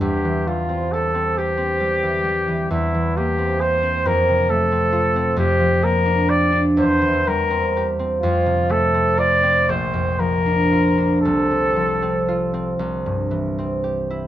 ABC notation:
X:1
M:6/8
L:1/16
Q:3/8=42
K:C
V:1 name="Trumpet"
G2 F2 A2 G6 | [K:F] E2 G2 c2 B2 A4 | G2 B2 d2 c2 B2 z2 | F2 A2 d2 c2 B4 |
A6 z6 |]
V:2 name="Harp"
[E,,G,CG] E, G, C G C G C G, E, G, E, | [K:F] E,, E, B, C G C F,, C, A, C F C | F,, F, B, D G D E,, E, G, C G C | F,, C, A, C F C B,,, F,, F, D F D |
C,, C, F, C F C C,, G,, E, C G E |]